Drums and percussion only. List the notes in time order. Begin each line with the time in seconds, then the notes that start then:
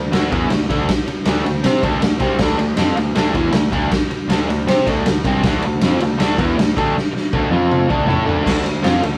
0.13 snare, ride
0.32 kick, ride
0.50 snare, ride
0.70 kick, ride
0.89 kick, snare, ride
1.08 ride
1.25 snare, ride
1.46 ride
1.64 snare, ride
1.83 kick, ride
2.02 snare, ride
2.20 kick, ride
2.39 kick, snare, crash
2.59 ride
2.77 snare, ride
2.97 ride
3.15 snare, ride
3.34 kick, ride
3.52 snare, ride
3.72 kick, ride
3.91 kick, snare, ride
4.11 ride
4.30 snare, ride
4.50 ride
4.68 snare, ride
4.87 kick, ride
5.06 snare, ride
5.24 kick, ride
5.43 kick, snare, ride
5.62 ride
5.81 snare, ride
6.00 ride
6.20 snare, ride
6.38 kick, ride
6.59 snare, ride
6.77 kick, ride
6.98 snare
7.16 snare
7.33 kick
7.52 high tom
7.71 mid tom
7.90 kick
8.10 floor tom
8.29 floor tom
8.46 kick, snare, crash
8.66 ride
8.84 snare, ride
9.03 ride